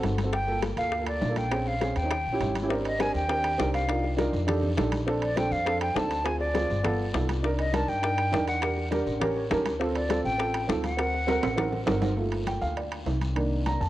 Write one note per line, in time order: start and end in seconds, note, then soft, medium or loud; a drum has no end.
0.00 0.72 G1 medium
0.00 0.16 C4 medium
0.00 0.16 F#4 medium
0.00 0.17 A4 medium
0.00 high bongo soft
0.00 low bongo medium
0.00 high conga medium
0.00 high timbale medium
0.00 low timbale medium
0.00 short guiro medium
0.18 high bongo soft
0.18 high conga medium
0.18 high timbale medium
0.18 short guiro medium
0.24 0.32 C4 medium
0.24 0.33 F#4 medium
0.24 0.33 A4 medium
0.33 0.60 G5 loud
0.33 high bongo medium
0.33 high conga soft
0.33 high timbale medium
0.47 0.68 A#3 medium
0.47 0.69 F4 medium
0.47 0.69 A4 medium
0.47 high bongo soft
0.47 high conga soft
0.62 high bongo medium
0.62 high conga medium
0.62 high timbale medium
0.62 short guiro medium
0.76 1.18 D2 medium
0.76 0.92 A#3 medium
0.76 0.93 F4 medium
0.76 0.93 A4 medium
0.76 1.05 F5 medium
0.76 high bongo soft
0.76 high conga soft
0.76 high timbale medium
0.76 short guiro medium
0.92 high bongo medium
0.92 high conga soft
0.99 1.20 A#3 medium
0.99 1.21 F4 soft
0.99 1.21 A4 medium
1.07 1.39 D5 medium
1.07 high conga soft
1.07 high timbale medium
1.21 1.90 A#1 loud
1.21 high bongo soft
1.21 low bongo medium
1.21 high conga medium
1.21 low timbale medium
1.21 short guiro medium
1.28 1.44 A#3 medium
1.28 1.45 F4 medium
1.28 1.45 A4 medium
1.36 1.69 G5 medium
1.36 high bongo soft
1.36 high conga medium
1.36 high timbale medium
1.36 short guiro medium
1.51 1.72 C4 medium
1.51 1.73 C#4 medium
1.51 1.73 G#4 medium
1.51 high bongo medium
1.51 high conga soft
1.51 high timbale medium
1.51 long guiro medium
1.67 1.99 F5 loud
1.67 high bongo soft
1.67 high conga soft
1.81 1.96 C4 medium
1.81 1.97 C#4 medium
1.81 1.97 G#4 medium
1.81 high bongo medium
1.81 high conga medium
1.81 high timbale medium
1.81 short guiro medium
1.96 2.24 D#2 medium
1.96 2.56 G5 loud
1.96 high bongo soft
1.96 high conga soft
1.96 high timbale medium
1.96 short guiro medium
2.03 2.11 C4 medium
2.03 2.11 C#4 medium
2.03 2.12 D#4 medium
2.11 high bongo medium
2.11 high conga soft
2.11 high timbale medium
2.26 2.39 A#1 medium
2.26 high conga soft
2.32 2.53 C#4 medium
2.32 2.54 E4 medium
2.32 2.54 G4 medium
2.40 3.09 G#1 medium
2.40 high bongo soft
2.40 low bongo medium
2.40 high conga medium
2.40 high timbale medium
2.40 low timbale medium
2.40 short guiro medium
2.55 high bongo soft
2.55 high conga medium
2.55 high timbale medium
2.55 short guiro medium
2.62 2.70 C#4 medium
2.62 2.70 E4 medium
2.62 2.69 G4 medium
2.69 2.90 C4 medium
2.69 2.91 D4 medium
2.69 2.91 G4 medium
2.69 2.91 A#4 medium
2.69 high bongo medium
2.69 high conga soft
2.69 long guiro medium
2.85 3.02 D#5 medium
2.85 high timbale medium
2.99 3.20 C4 medium
2.99 3.20 D4 medium
2.99 3.21 G4 medium
2.99 3.21 A#4 medium
2.99 3.15 G#5 loud
2.99 high bongo medium
2.99 high conga loud
2.99 high timbale medium
2.99 low timbale medium
2.99 short guiro medium
3.14 3.56 D#2 medium
3.14 3.70 G5 loud
3.14 high bongo soft
3.14 high conga soft
3.14 short guiro medium
3.28 3.50 C4 medium
3.28 3.50 D4 medium
3.28 3.50 G4 medium
3.28 3.51 A#4 medium
3.28 high bongo medium
3.28 high conga soft
3.28 high timbale medium
3.44 high bongo soft
3.44 high conga soft
3.44 high timbale medium
3.58 4.28 C2 medium
3.58 3.79 C4 medium
3.58 3.80 D4 medium
3.58 3.80 G4 medium
3.58 3.80 A#4 medium
3.58 high bongo medium
3.58 low bongo medium
3.58 high conga medium
3.58 low timbale medium
3.58 short guiro medium
3.74 4.15 F5 medium
3.74 high bongo soft
3.74 high timbale medium
3.74 short guiro medium
3.88 4.09 D4 medium
3.88 4.09 D#4 medium
3.88 4.10 F4 medium
3.88 4.10 A#4 medium
3.88 high bongo medium
3.88 high conga soft
3.88 high timbale medium
4.04 high bongo soft
4.04 high conga soft
4.17 4.38 D4 loud
4.17 4.39 D#4 medium
4.17 4.39 F4 medium
4.17 4.39 A#4 loud
4.17 high bongo medium
4.17 high conga medium
4.17 high timbale medium
4.17 low timbale medium
4.17 short guiro medium
4.33 4.74 F2 medium
4.33 high bongo soft
4.33 short guiro medium
4.47 4.68 D4 loud
4.47 4.68 D#4 medium
4.47 4.69 G4 medium
4.47 4.69 A4 medium
4.47 high bongo medium
4.47 high conga soft
4.47 low conga medium
4.47 high timbale medium
4.47 long guiro medium
4.63 high conga soft
4.63 low conga medium
4.77 5.46 A#1 loud
4.77 4.98 D4 medium
4.77 4.98 D#4 medium
4.77 4.99 G4 medium
4.77 4.99 A4 medium
4.77 high bongo medium
4.77 low bongo medium
4.77 high conga medium
4.77 high timbale medium
4.77 low timbale medium
4.77 short guiro medium
4.92 high bongo soft
4.92 high conga medium
4.92 high timbale medium
4.92 short guiro medium
5.06 5.27 C4 medium
5.06 5.28 D4 medium
5.06 5.28 A4 loud
5.06 high bongo medium
5.06 high conga soft
5.06 long guiro medium
5.22 5.39 D5 medium
5.22 high conga soft
5.22 high timbale medium
5.36 5.57 C4 medium
5.36 5.58 D4 medium
5.36 5.58 A4 medium
5.36 5.54 G5 loud
5.36 high bongo medium
5.36 high conga medium
5.36 high timbale medium
5.36 low timbale medium
5.36 short guiro medium
5.51 5.93 F2 medium
5.51 5.81 F5 loud
5.51 high bongo soft
5.51 high conga soft
5.51 short guiro medium
5.66 5.87 C4 medium
5.66 5.87 D4 medium
5.66 5.88 A4 medium
5.66 high bongo medium
5.66 high conga soft
5.66 high timbale medium
5.66 long guiro medium
5.81 5.98 G5 medium
5.81 high bongo soft
5.81 high conga soft
5.81 high timbale medium
5.95 6.64 D2 loud
5.95 6.16 C4 medium
5.95 6.17 D4 medium
5.95 6.17 A4 medium
5.95 6.27 A5 medium
5.95 high bongo medium
5.95 low bongo medium
5.95 high conga medium
5.95 low timbale medium
5.95 short guiro medium
6.11 high bongo soft
6.11 high timbale medium
6.11 short guiro medium
6.24 6.46 C4 medium
6.24 6.46 F4 medium
6.24 6.47 G#4 medium
6.24 6.39 G#5 loud
6.24 high bongo medium
6.24 high conga soft
6.24 high timbale medium
6.40 7.25 D5 loud
6.40 high bongo soft
6.40 high conga soft
6.54 6.75 C4 medium
6.54 6.76 F4 medium
6.54 6.76 G#4 medium
6.54 high bongo medium
6.54 high conga loud
6.54 high timbale medium
6.54 low timbale medium
6.54 short guiro medium
6.70 7.11 G1 medium
6.70 high bongo soft
6.70 short guiro medium
6.83 7.05 B3 medium
6.83 7.05 F4 medium
6.83 7.06 A4 loud
6.83 high bongo medium
6.83 high conga soft
6.83 low conga medium
6.83 high timbale medium
6.99 high conga soft
7.13 7.82 C2 medium
7.13 7.34 B3 medium
7.13 7.35 F4 medium
7.13 7.35 A4 medium
7.13 high bongo medium
7.13 low bongo medium
7.13 high conga medium
7.13 high timbale medium
7.13 low timbale medium
7.13 short guiro medium
7.29 high bongo soft
7.29 high conga medium
7.29 high timbale medium
7.29 short guiro medium
7.43 7.64 D4 medium
7.43 7.65 D#4 medium
7.43 7.65 A#4 loud
7.43 high bongo medium
7.43 high conga soft
7.43 long guiro medium
7.59 7.76 D#5 medium
7.59 high conga soft
7.59 high timbale medium
7.72 7.93 D4 medium
7.72 7.94 D#4 medium
7.72 7.94 A#4 medium
7.72 7.90 A5 loud
7.72 high bongo medium
7.72 high conga loud
7.72 high timbale medium
7.72 low timbale medium
7.72 short guiro medium
7.88 8.29 G2 medium
7.88 8.47 G5 loud
7.88 high bongo soft
7.88 high conga soft
7.88 short guiro medium
8.02 8.23 D4 medium
8.02 8.23 D#4 medium
8.02 8.24 A#4 medium
8.02 high bongo medium
8.02 high conga soft
8.02 high timbale medium
8.02 long guiro medium
8.18 high bongo soft
8.18 high conga soft
8.18 high timbale medium
8.31 9.01 E2 medium
8.31 8.52 D4 medium
8.31 8.53 D#4 medium
8.31 8.53 A#4 medium
8.31 high bongo medium
8.31 low bongo medium
8.31 high conga medium
8.31 low timbale medium
8.31 short guiro medium
8.47 8.89 F#5 medium
8.47 high bongo soft
8.47 high timbale medium
8.47 short guiro medium
8.61 8.82 D4 medium
8.61 8.83 G4 medium
8.61 8.83 A#4 medium
8.61 high bongo medium
8.61 high conga soft
8.61 high timbale medium
8.61 long guiro medium
8.77 high bongo soft
8.77 high conga soft
8.91 9.12 D4 medium
8.91 9.12 G4 medium
8.91 9.13 A#4 loud
8.91 high bongo medium
8.91 high conga loud
8.91 high timbale medium
8.91 low timbale medium
8.91 short guiro medium
9.06 9.47 A1 medium
9.06 high bongo soft
9.06 short guiro medium
9.20 9.41 C#4 medium
9.20 9.42 G4 medium
9.20 9.42 A#4 loud
9.20 high bongo medium
9.20 high conga soft
9.20 low conga medium
9.20 high timbale medium
9.36 9.50 C#5 medium
9.36 high conga soft
9.50 10.19 D2 loud
9.50 9.71 C#4 medium
9.50 9.71 G4 medium
9.50 9.72 A#4 medium
9.50 9.78 A5 medium
9.50 high bongo medium
9.50 low bongo medium
9.50 high conga medium
9.50 high timbale medium
9.50 low timbale medium
9.50 short guiro medium
9.66 high bongo soft
9.66 high conga medium
9.66 high timbale medium
9.66 short guiro medium
9.80 10.01 C4 loud
9.80 10.01 F4 medium
9.80 10.02 A4 medium
9.80 high bongo medium
9.80 high conga soft
9.80 long guiro medium
9.95 10.23 D5 medium
9.95 high conga soft
9.95 high timbale medium
10.09 10.30 C4 medium
10.09 10.31 F4 medium
10.09 10.31 A4 medium
10.09 high bongo medium
10.09 high conga loud
10.09 high timbale medium
10.09 low timbale medium
10.09 short guiro medium
10.24 10.66 A1 medium
10.24 10.66 G5 loud
10.24 high bongo soft
10.24 high conga soft
10.24 short guiro medium
10.38 10.59 C4 medium
10.38 10.60 F4 medium
10.38 10.60 A4 medium
10.38 high bongo medium
10.38 high conga soft
10.38 high timbale medium
10.54 high bongo soft
10.54 high conga soft
10.54 high timbale medium
10.68 11.37 D2 loud
10.68 10.89 C4 medium
10.68 10.89 F4 medium
10.68 10.90 A4 medium
10.68 high bongo medium
10.68 low bongo medium
10.68 high conga medium
10.68 low timbale medium
10.68 short guiro medium
10.83 11.98 F#5 loud
10.83 high bongo soft
10.83 high conga medium
10.83 high timbale medium
10.83 short guiro medium
10.97 11.19 C4 medium
10.97 11.19 F#4 medium
10.97 11.20 A#4 medium
10.97 high bongo medium
10.97 high conga soft
10.97 high timbale medium
10.97 long guiro medium
11.14 high bongo soft
11.14 high conga soft
11.27 11.48 C4 medium
11.27 11.49 F#4 medium
11.27 11.49 A#4 loud
11.27 high bongo medium
11.27 high conga loud
11.27 high timbale medium
11.27 short guiro medium
11.43 11.84 A1 medium
11.43 high bongo soft
11.43 high timbale medium
11.43 short guiro medium
11.56 11.78 C4 medium
11.56 11.78 F#4 medium
11.56 11.79 A#4 loud
11.56 high bongo medium
11.56 high conga soft
11.56 low conga medium
11.56 low timbale loud
11.73 high conga soft
11.73 low conga medium
11.73 low timbale medium
11.86 12.56 G1 medium
11.86 12.08 C4 medium
11.86 12.08 F#4 medium
11.86 12.09 A#4 medium
11.86 high bongo medium
11.86 low bongo medium
11.86 high conga medium
11.86 low timbale loud
11.86 short guiro medium
12.02 high bongo soft
12.02 high conga medium
12.02 low timbale medium
12.02 short guiro medium
12.16 13.32 A3 medium
12.16 13.32 A#3 soft
12.16 13.32 F4 medium
12.16 high conga soft
12.16 long guiro medium
12.32 high conga soft
12.32 high timbale medium
12.47 12.61 G5 medium
12.47 high conga loud
12.47 high timbale medium
12.47 low timbale medium
12.47 short guiro medium
12.61 13.03 D2 medium
12.61 12.76 F5 medium
12.61 high conga soft
12.61 short guiro medium
12.77 12.91 D5 soft
12.77 high conga soft
12.77 high timbale medium
12.77 long guiro medium
12.92 high conga soft
12.92 high timbale medium
13.06 13.75 C2 medium
13.06 high conga medium
13.06 low timbale medium
13.06 short guiro medium
13.21 high conga medium
13.21 high timbale medium
13.21 short guiro medium
13.35 13.78 D#3 medium
13.35 13.78 A#3 soft
13.35 13.79 D4 medium
13.35 high conga soft
13.35 high timbale medium
13.51 high conga soft
13.66 13.80 A#5 medium
13.66 high conga medium
13.66 high timbale medium
13.66 low timbale medium
13.66 short guiro medium
13.80 13.89 F2 medium
13.80 13.89 A5 medium
13.80 short guiro medium